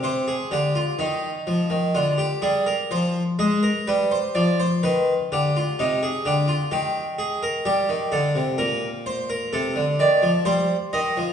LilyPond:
<<
  \new Staff \with { instrumentName = "Harpsichord" } { \time 4/4 \key c \minor \tempo 4 = 64 c''16 aes'16 g'16 f'16 ees'4 f'16 g'16 aes'16 bes'16 c''8 aes'16 bes'16 | b'16 c''16 d''16 c''16 b'8 g'16 f'16 ees'16 aes'16 g'16 f'16 g'8 aes'16 bes'16 | g'8 a'8 bes'8 c''16 bes'16 a'8 d''8 c''8 ees''8 | }
  \new Staff \with { instrumentName = "Harpsichord" } { \clef bass \time 4/4 \key c \minor c8 d8 ees8 f16 ees16 d8 g8 f8 aes8 | g8 f8 ees8 d8 c8 d8 ees4 | g16 ees16 d16 c16 bes,4 c16 d16 ees16 f16 g8 ees16 f16 | }
>>